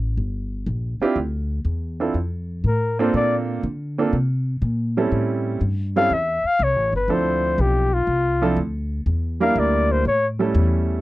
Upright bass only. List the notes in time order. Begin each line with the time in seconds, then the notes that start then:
Already playing: A1
0.17 G1
0.66 A#1
1.00 muted upright bass stroke
1.16 D2
1.65 E2
2.14 F2
2.64 A2
3.14 A#2
3.63 D3
4.13 C3
4.62 A#2
5.12 A2
5.61 G2
6.10 E2
6.44 muted upright bass stroke
6.59 C2
6.76 A1
6.92 G1
7.08 D2
7.58 B1
8.07 C2
8.56 D2
9.06 E2
9.56 D2
10.05 A2
10.55 E2